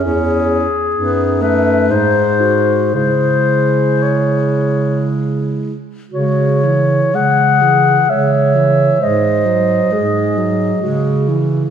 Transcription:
0.04 0.68 E2 soft
0.04 0.66 C#4 soft
0.04 0.66 E4 soft
0.04 1.44 G#4 medium
0.96 1.93 F#2 soft
0.96 1.43 B3 soft
0.96 1.87 D#4 soft
1.42 1.92 A3 soft
1.42 1.92 B4 medium
1.90 2.96 G#2 soft
1.90 2.94 G#3 soft
1.90 2.42 D#4 soft
1.90 2.95 C5 soft
2.41 2.94 F#4 soft
2.94 5.78 C#3 soft
2.94 5.74 G#3 soft
2.94 5.73 E4 soft
2.94 4.04 C5 soft
4.03 5.08 C#5 soft
6.11 7.03 C#3 soft
6.11 6.66 G#3 soft
6.11 6.65 F#4 soft
6.11 7.17 C#5 soft
6.63 7.16 E3 soft
6.63 7.13 E4 soft
7.14 7.98 C#3 soft
7.14 7.64 G#3 soft
7.14 8.07 G#4 soft
7.14 8.11 F#5 medium
7.62 8.09 E3 soft
8.09 8.90 C#3 soft
8.09 8.57 G#3 soft
8.09 9.02 C#5 soft
8.09 9.04 E5 soft
8.56 9.00 E3 soft
9.01 9.82 G#2 soft
9.01 9.47 G#3 soft
9.01 9.94 C5 soft
9.01 11.30 D#5 soft
9.46 9.93 F#3 soft
9.91 10.73 G#2 soft
9.91 10.39 G#3 soft
9.91 10.85 G#4 soft
10.37 10.81 F#3 soft
10.82 11.64 C#3 soft
10.82 11.30 G#3 soft
10.82 11.30 F#4 soft
11.28 11.70 E3 soft
11.28 11.70 E4 soft

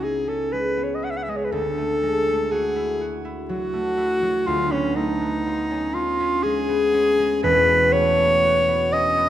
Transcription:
0.00 1.57 C#2 soft
0.00 0.76 B3 soft
0.00 0.26 C#4 soft
0.00 0.45 D#4 soft
0.00 2.75 E4 soft
0.04 0.30 G#4 medium
0.28 1.01 C#4 soft
0.28 0.54 A4 medium
0.52 1.27 G#3 soft
0.52 0.85 B4 medium
0.77 1.57 B3 soft
0.84 0.96 C#5 medium
0.95 1.06 D#5 medium
1.02 1.57 C#4 soft
1.02 1.12 F#5 medium
1.10 1.18 E5 medium
1.17 1.24 F#5 medium
1.23 1.31 E5 medium
1.28 1.57 G#3 soft
1.28 1.38 D#5 medium
1.37 1.46 C#5 medium
1.45 1.53 B4 medium
1.52 4.46 D2 medium
1.52 2.52 A4 loud
1.78 2.27 A3 soft
2.03 2.45 G#3 soft
2.28 3.72 A3 soft
2.51 3.00 F#4 medium
2.51 3.23 G#4 medium
2.76 3.23 E4 medium
3.01 3.42 F#4 soft
3.25 3.96 E4 soft
3.49 4.21 F#3 medium
3.49 4.48 F#4 loud
3.73 4.51 A3 soft
3.97 4.51 E4 medium
4.22 4.51 F#3 medium
4.47 7.48 D2 medium
4.47 4.73 F4 loud
4.72 5.20 B3 medium
4.72 4.97 C#4 medium
4.96 5.38 A3 medium
4.96 5.96 D#4 medium
5.21 6.68 B3 medium
5.47 7.48 F4 medium
5.71 6.19 C#4 medium
5.94 6.37 D#4 medium
5.94 6.45 F4 loud
6.20 6.93 C#4 medium
6.44 7.18 G#3 medium
6.44 7.43 G#4 loud
6.69 7.68 B3 medium
6.94 8.91 C#4 medium
7.19 9.29 G#3 medium
7.43 9.29 E1 medium
7.43 9.29 E2 medium
7.43 7.94 B4 loud
7.69 8.17 B3 medium
7.93 8.36 A3 medium
7.93 8.94 C#5 loud
8.18 8.67 B3 medium
8.44 9.29 F#4 medium
8.68 9.16 B3 medium
8.93 9.29 C#4 medium
8.93 9.29 D#5 loud
9.18 9.29 B3 medium

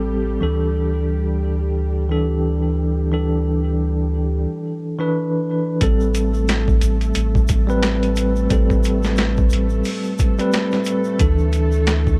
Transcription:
0.00 0.39 A1 medium
0.00 0.38 G3 medium
0.00 4.46 G3 medium
0.00 0.39 C4 medium
0.00 4.47 G4 medium
0.00 0.39 A4 medium
0.41 4.46 D2 medium
0.41 2.06 E3 medium
0.41 2.07 D4 medium
0.41 2.08 A4 medium
2.10 3.08 E3 medium
2.10 3.08 D4 medium
2.10 3.09 A4 medium
3.12 4.77 E3 medium
3.12 4.77 D4 medium
3.12 4.78 A4 medium
4.99 5.77 E3 medium
4.99 5.78 D4 medium
4.99 5.78 B4 medium
5.80 6.79 A1 loud
5.80 7.46 G3 medium
5.80 12.20 A3 medium
5.80 7.47 C4 medium
5.80 12.20 A4 medium
5.80 7.47 A4 medium
5.80 kick loud
5.80 closed hi-hat medium
5.80 shaker soft
6.00 shaker soft
6.15 closed hi-hat medium
6.15 shaker medium
6.34 shaker soft
6.48 snare loud
6.48 closed hi-hat medium
6.48 shaker soft
6.68 kick medium
6.68 shaker soft
6.82 7.13 A1 loud
6.82 closed hi-hat medium
6.82 shaker medium
7.01 closed hi-hat soft
7.01 shaker soft
7.15 7.46 A1 medium
7.15 closed hi-hat medium
7.15 shaker medium
7.35 kick medium
7.35 shaker soft
7.48 8.48 A1 loud
7.48 kick medium
7.48 closed hi-hat medium
7.48 shaker medium
7.67 8.46 G3 medium
7.67 8.47 C4 medium
7.67 8.48 B4 medium
7.67 shaker soft
7.83 snare loud
7.83 closed hi-hat medium
7.83 shaker soft
8.03 closed hi-hat soft
8.03 shaker soft
8.16 closed hi-hat medium
8.16 shaker medium
8.36 shaker soft
8.50 9.49 A1 loud
8.50 10.16 G3 medium
8.50 10.16 C4 medium
8.50 10.16 A4 medium
8.50 kick loud
8.50 closed hi-hat medium
8.50 shaker medium
8.70 kick medium
8.70 shaker soft
8.84 closed hi-hat medium
8.84 shaker medium
9.03 snare medium
9.03 shaker soft
9.16 snare loud
9.16 closed hi-hat medium
9.16 shaker medium
9.37 kick medium
9.37 shaker soft
9.50 9.82 A1 loud
9.50 closed hi-hat medium
9.50 shaker medium
9.69 shaker soft
9.84 open hi-hat medium
9.84 shaker medium
10.03 shaker soft
10.18 kick loud
10.18 closed hi-hat medium
10.18 shaker medium
10.38 11.17 G3 medium
10.38 11.17 C4 medium
10.38 11.18 B4 medium
10.38 closed hi-hat soft
10.38 shaker soft
10.52 snare loud
10.52 closed hi-hat medium
10.52 shaker medium
10.71 snare soft
10.71 shaker soft
10.85 closed hi-hat medium
10.85 shaker loud
11.04 shaker soft
11.19 12.19 D2 medium
11.19 12.20 E3 medium
11.19 12.20 D4 medium
11.19 12.20 A4 medium
11.19 kick loud
11.19 closed hi-hat medium
11.19 shaker medium
11.39 shaker soft
11.53 closed hi-hat medium
11.53 shaker medium
11.72 shaker soft
11.87 snare loud
11.87 closed hi-hat medium
11.87 shaker medium
12.07 kick medium
12.07 shaker soft

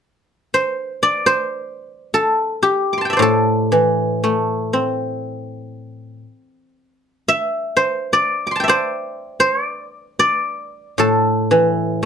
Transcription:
0.54 1.26 C5 soft
1.03 2.87 D5 medium
1.26 3.16 C5 medium
2.14 3.22 A4 soft
2.63 4.98 G4 soft
2.93 4.15 D6 soft
2.98 4.46 A5 soft
2.98 4.28 C6 soft
3.05 4.61 G5 soft
3.10 4.98 D5 soft
3.10 4.82 E5 soft
3.17 6.23 A2 soft
3.17 5.15 C5 soft
3.22 5.57 A4 medium
3.72 5.74 E3 soft
4.24 6.24 A3 soft
4.73 6.73 C4 soft
7.28 8.63 E5 medium
7.77 8.69 C5 medium
8.13 8.67 D5 medium
8.47 9.69 D6 soft
8.51 9.82 C6 soft
8.56 10.01 A5 soft
8.60 10.36 E5 soft
8.60 10.15 G5 soft
8.68 9.40 C5 medium
8.68 9.39 D5 soft
9.40 9.63 C5 medium
9.63 10.19 D5 medium
10.19 12.04 D5 medium
10.98 12.05 A2 soft
10.98 12.05 A4 soft
11.51 12.05 E3 soft

